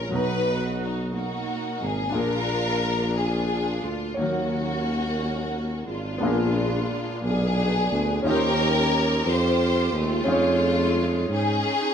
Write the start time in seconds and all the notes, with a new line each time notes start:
Already playing: A#2 C#4 F4 G#4 A#4
0.09 B1 B2 F#3 D#4
0.13 D#4 F#4 B4 A#5
0.81 D#4
1.15 A#3 D#4 F#4
1.80 G#1 G#4
2.10 A#2 D4 F4
2.14 A#1 D4 F4 G#4 A#4
3.18 D4 F4 G#4
3.84 D2 F4
4.14 D#2 D#3 A#3 C#5
4.19 F#3 A#3 C#4 F#4 A#4
5.87 G#1 G#3 D4 F4
6.18 A#1 B3 D4
6.22 A#2 F4 G#4
6.27 A#4
7.23 B1 B3 D4 G#4
7.91 D2
8.22 D#2 C#4 D#4
8.26 D#3 C#4 F4 G4 A#4
8.37 C5
9.26 F2 F4 G4 C5
9.92 D#2
9.97 G#3 A3 F4
10.24 F2 C#4 D#4
10.28 F4 G#4
10.32 C#5
11.29 G#2 C#4 D#4 G#4